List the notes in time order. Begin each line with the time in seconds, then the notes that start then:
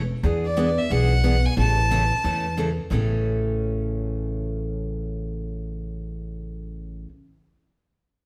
0.23 E2 E3 B3 D4 G#4
0.45 D5
0.57 E3 B3 D4 G#4
0.78 E5
0.90 B1 E3 B3 D4 G#4 F#5
1.24 E3 B3 D4 G#4
1.45 G#5
1.57 A1 C#3 E3 A3 C#4 A4 A5
1.91 C#3 E3 A3 C#4 A4
2.24 E2 C#3 E3 A3 C#4 A4
2.57 C#3 E3 A3 C#4 A4
2.90 A1 A2 C#3 E3 A3 C#4 A4